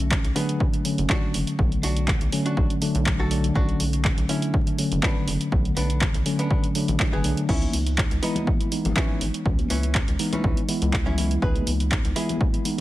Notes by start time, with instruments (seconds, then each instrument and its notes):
Already playing: analog synth bass B1, tine electric piano D3 F#3 A3 C#4
0.11 kick, clap
0.24 analog synth bass B1, closed hi-hat
0.36 tine electric piano D3 F#3 A3 D4, hollow-body jazz guitar B3 G#4, open hi-hat
0.49 closed hi-hat
0.60 kick
0.74 closed hi-hat
0.85 tine electric piano D3 F#3 A3 C#4, open hi-hat
0.98 analog synth bass F#1, closed hi-hat
1.10 hollow-body jazz guitar D4 F#4, kick, clap
1.34 analog synth bass F#1, open hi-hat
1.47 closed hi-hat
1.58 analog synth bass B1, tine electric piano D3 F#3 A3 B3, kick
1.72 closed hi-hat
1.83 analog synth bass B1, hollow-body jazz guitar D4 F#4, open hi-hat
1.97 closed hi-hat
2.08 kick, clap
2.21 analog synth bass B1, closed hi-hat
2.32 tine electric piano D3 F#3 A3 C#4, open hi-hat
2.46 hollow-body jazz guitar D4 F#4, closed hi-hat
2.57 analog synth bass B1, kick
2.70 closed hi-hat
2.81 tine electric piano D3 F#3 A3 D4, open hi-hat
2.95 analog synth bass B1, closed hi-hat
3.06 kick, clap
3.19 hollow-body jazz guitar F#4 A4
3.31 tine electric piano D3 F#3 A3 D4, open hi-hat
3.44 closed hi-hat
3.55 analog synth bass B1, tine electric piano D3 F#3 A3, hollow-body jazz guitar D4 F#4, kick
3.69 closed hi-hat
3.80 analog synth bass B1, open hi-hat
3.93 closed hi-hat
4.05 kick, clap
4.18 analog synth bass B1, closed hi-hat
4.29 tine electric piano D3 F#3 A3 D4, hollow-body jazz guitar C#4 E4, open hi-hat
4.42 closed hi-hat
4.54 kick
4.67 closed hi-hat
4.78 tine electric piano D3 F#3 A3 C#4, open hi-hat
4.92 analog synth bass F#1, closed hi-hat
5.03 hollow-body jazz guitar B3 D4, kick, clap
5.28 analog synth bass F#1, open hi-hat
5.41 closed hi-hat
5.52 analog synth bass B1, tine electric piano D3 F#3 A3 B3, kick
5.65 closed hi-hat
5.77 analog synth bass B1, hollow-body jazz guitar B3 D4, open hi-hat
5.90 closed hi-hat
6.01 kick, clap
6.14 analog synth bass B1, closed hi-hat
6.26 tine electric piano D3 F#3 A3 C#4, open hi-hat
6.39 hollow-body jazz guitar B3 D4, closed hi-hat
6.51 kick
6.64 closed hi-hat
6.75 tine electric piano D3 F#3 A3 D4, open hi-hat
6.88 analog synth bass A1, closed hi-hat
7.00 kick, clap
7.13 analog synth bass F#1, hollow-body jazz guitar B3 G#4
7.24 analog synth bass B1, tine electric piano D3 F#3 A3 D4, open hi-hat
7.37 closed hi-hat
7.49 analog synth bass C#2, tine electric piano E3, hollow-body jazz guitar C#4 E4, kick, crash
7.62 closed hi-hat, high conga
7.73 analog synth bass C#2, open hi-hat
7.87 closed hi-hat
7.98 kick, clap
8.11 analog synth bass C#2, closed hi-hat
8.22 tine electric piano E3 G#3 B3 E4, hollow-body jazz guitar B3 D#4, open hi-hat
8.35 closed hi-hat, high conga, low conga
8.47 kick
8.61 closed hi-hat
8.71 tine electric piano E3 G#3 B3 D#4, open hi-hat
8.85 analog synth bass G#1, closed hi-hat, low conga
8.96 hollow-body jazz guitar E3 C#4, kick, clap
9.21 analog synth bass G#1, open hi-hat
9.34 closed hi-hat
9.45 analog synth bass C#2, tine electric piano E3 G#3 C#4, kick
9.58 closed hi-hat, high conga
9.70 analog synth bass C#2, hollow-body jazz guitar E3 C#4, open hi-hat
9.83 closed hi-hat
9.95 kick, clap
10.08 analog synth bass C#2, closed hi-hat
10.19 tine electric piano E3 G#3 B3 D#4, open hi-hat
10.33 hollow-body jazz guitar E3 C#4, closed hi-hat, high conga, low conga
10.44 analog synth bass C#2, kick
10.57 closed hi-hat
10.68 tine electric piano E3 G#3 B3 E4, open hi-hat
10.82 analog synth bass C#2, closed hi-hat
10.93 kick, clap
11.06 hollow-body jazz guitar C#4 E4, low conga
11.18 tine electric piano E3 G#3 B3 E4, open hi-hat
11.31 closed hi-hat
11.42 analog synth bass C#2, tine electric piano E3 G#3 B3 D#4, hollow-body jazz guitar G#4 B4, kick
11.55 closed hi-hat, high conga
11.67 analog synth bass C#2, open hi-hat
11.80 closed hi-hat
11.91 kick, clap
12.05 analog synth bass C#2, closed hi-hat
12.16 tine electric piano E3 G#3 B3 E4, hollow-body jazz guitar E4 G#4, open hi-hat
12.29 closed hi-hat, high conga, low conga
12.41 kick
12.54 closed hi-hat
12.65 tine electric piano E3 G#3 B3 D#4, open hi-hat